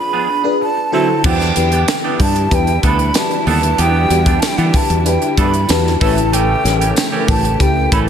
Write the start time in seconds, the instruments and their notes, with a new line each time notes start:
Already playing: fm electric piano D4 F4 G#4 B4
0.00 flute B5
0.13 clean electric guitar F3 B3 D4 G#4
0.29 muted clean electric guitar stroke
0.44 fm electric piano D4 F4 G#4 B4, muted clean electric guitar stroke
0.61 flute A5, muted clean electric guitar stroke
0.77 muted clean electric guitar stroke
0.92 fm electric piano D3 E4 F#4 A4 C5, clean electric guitar F#3 C4 E4 A4, flute A5
1.09 muted clean electric guitar stroke
1.24 fingered electric bass E2, string section D3 G3 E4, clean electric guitar E3 B3 D4 G4, flute G5, kick, crash
1.40 snare, closed hi-hat
1.56 fingered electric bass E2, fm electric piano D4 E4 G4 B4, muted clean electric guitar stroke, closed hi-hat
1.72 clean electric guitar E3 B3 D4 G4, closed hi-hat
1.88 snare, closed hi-hat, tambourine
2.04 clean electric guitar E3 B3 D4 G4
2.20 fingered electric bass G2, flute A5, muted clean electric guitar stroke, kick, open hi-hat
2.36 muted clean electric guitar stroke, closed hi-hat
2.51 fingered electric bass E2, fm electric piano D4 E4 G4 B4, flute G5, muted clean electric guitar stroke, kick, closed hi-hat
2.67 muted clean electric guitar stroke, closed hi-hat
2.83 fingered electric bass D2, clean electric guitar E3 B3 D4 A4, flute B5, kick, closed hi-hat
2.99 muted clean electric guitar stroke, closed hi-hat
3.14 fm electric piano D4 F#4 G4 B4, flute A5, snare, closed hi-hat, tambourine
3.31 muted clean electric guitar stroke, closed hi-hat
3.46 fingered electric bass D#2, clean electric guitar E3 B3 D4 A4, flute A5, open hi-hat
3.63 muted clean electric guitar stroke, closed hi-hat
3.78 fingered electric bass E2, clean electric guitar E3 B3 D4 G4, flute G5, closed hi-hat
4.10 fingered electric bass E2, fm electric piano D4 F#4 G4 B4, muted clean electric guitar stroke, closed hi-hat
4.26 clean electric guitar E3 B3 D4 G4, kick, closed hi-hat
4.40 flute A5, muted fingered electric bass stroke, snare, closed hi-hat, tambourine
4.48 flute G5
4.57 fingered electric bass E3, clean electric guitar E3 B3 D4 G4, flute F#5, closed hi-hat
4.66 flute G5
4.73 flute A5, kick, open hi-hat
4.90 fingered electric bass E2, muted clean electric guitar stroke, closed hi-hat
5.00 flute A5
5.05 fm electric piano D4 E4 G4 B4, flute G5, muted clean electric guitar stroke, closed hi-hat
5.22 muted clean electric guitar stroke, closed hi-hat
5.37 fingered electric bass G2, clean electric guitar E3 B3 D4 A4, flute B5, kick, closed hi-hat
5.54 muted clean electric guitar stroke, closed hi-hat
5.69 fingered electric bass E2, fm electric piano D4 F#4 G4 B4, flute A5, snare, closed hi-hat, tambourine
5.85 muted clean electric guitar stroke, snare
6.00 fingered electric bass A1, string section C#3 A3 G4, clean electric guitar E3 A3 C#4 A4, fm electric piano C#4 E4 G4 B4, flute A5, kick, open hi-hat
6.17 muted clean electric guitar stroke, closed hi-hat
6.32 clean electric guitar E3 A3 C#4 G4, flute G5, closed hi-hat
6.64 fingered electric bass A1, fm electric piano C#4 E4 G4 A#4, muted clean electric guitar stroke, snare, closed hi-hat
6.72 fm electric piano B4
6.81 clean electric guitar E3 A3 C#4 G4, closed hi-hat
6.96 muted clean electric guitar stroke, snare, closed hi-hat, tambourine
7.12 clean electric guitar E3 A3 C#4 G4
7.28 fingered electric bass A1, flute A5, muted clean electric guitar stroke, kick, open hi-hat
7.44 muted clean electric guitar stroke, closed hi-hat
7.54 flute A5
7.59 fingered electric bass C#2, fm electric piano C#4 E4 G4 B4, flute G5, muted clean electric guitar stroke, kick, closed hi-hat
7.76 muted clean electric guitar stroke
7.92 fingered electric bass A1, clean electric guitar E3 A3 C#4 A4, flute B5, kick, closed hi-hat